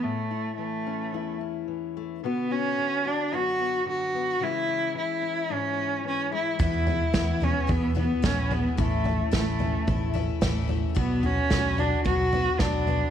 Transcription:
<<
  \new Staff \with { instrumentName = "Cello" } { \time 4/4 \key a \major \tempo 4 = 110 a4 a4. r4. | b8 cis'4 d'8 fis'4 fis'4 | e'4 e'4 cis'4 cis'8 e'8 | e'4. cis'8 b8 b8 cis'8 b8 |
a4 a4. r4. | b8 cis'4 d'8 fis'4 d'4 | }
  \new Staff \with { instrumentName = "Twelve-string acoustic guitar" } { \time 4/4 \key a \major r1 | r1 | r1 | <e, b, e gis b e'>8 <e gis b e'>8 <e, b, e gis b e'>8 <e gis b e'>8 <e gis b e'>8 <e gis b e'>8 <e, b, e gis b e'>8 <e gis b e'>8 |
<a, e a cis' e'>8 <a cis' e'>8 <a, e a cis' e'>8 <a cis' e'>8 <e a cis' e'>8 <a cis' e'>8 <a, e a cis' e'>8 <a cis' e'>8 | <b, fis b d' fis'>8 <b d' fis'>8 <b, fis b d' fis'>8 <b d' fis'>8 <fis b d' fis'>8 <b d' fis'>8 <b, fis b d' fis'>8 <b d' fis'>8 | }
  \new Staff \with { instrumentName = "Steel-string acoustic guitar" } { \time 4/4 \key a \major << { r8 e'4 cis'8 e'8 cis'4 a8 | <d b fis'>8 fis'4 fis'8 b8 b4 b8 | <e gis cis'>8 cis'4 cis'8 e'8 cis'4 gis8 | r8 b4 b8 gis'8 b4 gis8 |
<e a cis' e'>8 e'4 cis'8 e'8 cis'4 a8 | r8 fis'4 fis'8 b8 b4 b8 | } \\ { a,4 e4 e,4 e4 | b,4 d4 fis,4 d4 | cis4 e4 gis,4 e4 | e,4 e4 b,4 e4 |
a,4 e4 e,4 e4 | b,4 d4 fis,4 d4 | } >> }
  \new Staff \with { instrumentName = "Fingered electric bass" } { \clef bass \time 4/4 \key a \major r1 | r1 | r1 | e,4 e,4 e,4 bes,,4 |
a,,4 a,,4 a,,4 a,,4 | b,,4 b,,4 b,,4 b,,4 | }
  \new DrumStaff \with { instrumentName = "Drums" } \drummode { \time 4/4 r4 r4 r4 r4 | r4 r4 r4 r4 | r4 r4 r4 r4 | <bd tomfh>8 tomfh8 <bd sn tomfh>8 tomfh8 <bd tomfh>8 tomfh8 <bd sn tomfh>8 tomfh8 |
<bd tomfh>8 tomfh8 <bd sn tomfh>8 tomfh8 <bd tomfh>8 tomfh8 <bd sn tomfh>8 tomfh8 | <bd tomfh>8 tomfh8 <bd sn tomfh>8 tomfh8 <bd tomfh>8 tomfh8 <bd sn tomfh>8 tomfh8 | }
>>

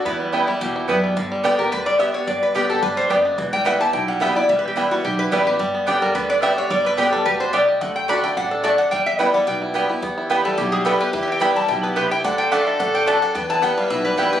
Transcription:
<<
  \new Staff \with { instrumentName = "Resonator guitar played with a steel bar" } { \time 4/4 \key e \minor \tempo 4 = 217 b'4 r2. | r4. ais'8 b'8 d''8 e''8 cis''8 | d''8 b'8 g'8 a'8 b'8 c''8 d''8 dis''8 | e''8 g''8 fis''8 a''8 g''8 fis''8 e''8 d''8 |
\tuplet 3/2 { e''8 b'8 g'8 } e'8 fis'8 g'8 b'8 d''8 b'8 | r4. ais'8 b'8 d''8 e''8 cis''8 | d''8 b'8 g'8 a'8 b'8 c''8 d''8 dis''8 | fis''8 g''8 b''8 g''8 fis''8 a'8 d''8 fis''8 |
g''8 e''8 d''8 fis''8 g''4.~ g''16 r16 | r4. a'8 g'8 gis'8 a'8 b'8 | \tuplet 3/2 { b'8 e''8 g''8 } b''8 a''8 g''8 b'8 e''8 g''8 | fis''8 g''8 fis''8 e''8 fis''8 g''8 a''8 fis''8 |
g''8 a''8 fis''8 f''8 e''8 b'8 g'8 g'8 | }
  \new Staff \with { instrumentName = "Mandolin" } { \time 4/4 \key e \minor r4 <b e' b' g''>8 r4. <b e' b' g''>8 r8 | r4 <b g' d'' g''>8 r4. <b g' d'' g''>8 r8 | r4 <b g' d'' g''>8 r4. <b g' d'' g''>8 r8 | r4 <b e' b' g''>8 r4. <b e' b' g''>8 r8 |
r4 <b e' b' g''>8 r4. <b e' b' g''>8 r8 | r4 <b g' d'' g''>8 r4. <b g' d'' g''>8 r8 | r4 <b g' d'' g''>8 r4. <b g' d'' g''>8 r8 | r4 <a fis' d'' a''>8 r4. <a fis' d'' a''>8 r8 |
r4 <b e' b' g''>8 r4. <b e' b' g''>8 r8 | r4 <b e' b' g''>8 r4. <b e' b' g''>8 r8 | r4 <b e' b' g''>8 r4. <b e' b' g''>8 r8 | r4 <a fis' d'' a''>8 r4. <a fis' d'' a''>8 r8 |
r4 <b e' b' g''>8 r4. <b e' b' g''>8 r8 | }
  \new Staff \with { instrumentName = "Fiddle" } { \time 4/4 \key e \minor e'2.~ e'8 r8 | r1 | r1 | r1 |
r1 | r1 | r1 | r1 |
r1 | g'1~ | g'1 | a'1 |
b'1 | }
  \new Staff \with { instrumentName = "Five-string banjo" } { \time 4/4 \key e \minor b8 g8 e'8 g8 g'8 e'8 b8 g8 | d8 g8 d'8 g'8 d'8 g8 b8 d'8 | d4 d'8 g'8 d'8 g8 b8 d'8 | e8 g8 e'8 g'8 e'8 g8 b8 e'8 |
g8 e8 e'8 g8 g'8 e'8 g8 g'8 | g8 b8 d'8 g8 b8 d'8 g'8 d'8 | g8 d8 d'8 g8 g'8 d'8 g8 g'8 | a4 d'8 a8 d'8 d'8 a8 d'8 |
g4 e'8 g8 b8 e'8 g'8 e'8 | b8 e'8 b8 g8 e'8 g8 e'8 g'8 | e'8 e8 e'8 g8 e'8 b8 g'8 e'8 | d'8 d8 d'8 a8 d'8 d'8 d'8 d'8 |
b8 e'8 b8 g8 e'8 g8 e'8 g'8 | }
  \new Staff \with { instrumentName = "Steel-string acoustic guitar" } { \clef bass \time 4/4 \key e \minor << { r4 <e g b e'>8 <b e'>8 r4 <e g b e'>4 | r4 <d g b g'>8 <b g'>8 r4 <d g b g'>8 <b g'>8 | r4 <d g b g'>8 <b g'>8 r2 | r4 <e g b e'>8 <b e'>8 r4 <e g b e'>8 <b e'>8 |
r4 <e g b e'>8 <b e'>8 r4 <e g b e'>8 <b e'>8 | r4 <d g b g'>4 r4 <d g b g'>4 | r4 <d g b g'>4 r2 | r4 <d a d' fis'>8 <d' fis'>8 r2 |
r4 <e g b e'>8 <b e'>8 r4 <e g b e'>8 <b e'>8 | r4 <e g b e'>4 r4 <e g b e'>8 <b e'>8 | r4 <e g b e'>4 r2 | r4 <d a d' fis'>4 r2 |
r4 <e g b e'>4 r4 <e g b e'>8 <b e'>8 | } \\ { e,2 b,2 | g,2 d2 | g,2 g,4 fis,4 | e,2 b,2 |
e,2 b,2 | g,2 d2 | g,2 b,4 c4 | d2 g,4 fis,4 |
e,2 b,2 | e,2 b,2 | e,2 b,4 c4 | d2 g,4 fis,4 |
e,2 b,2 | } >> }
  \new Staff \with { instrumentName = "Upright bass" } { \clef bass \time 4/4 \key e \minor e,2 e,4 fis,4 | g,,2 d,2 | g,,2 g,,4 fis,,4 | e,,2 b,,2 |
e,,2 b,,4 a,,4 | g,,2 d,2 | g,,2 d,2 | d,2 a,,2 |
e,2 b,,2 | e,2 b,,2 | e,2 b,,2 | d,2 a,,2 |
e,2 b,,2 | }
>>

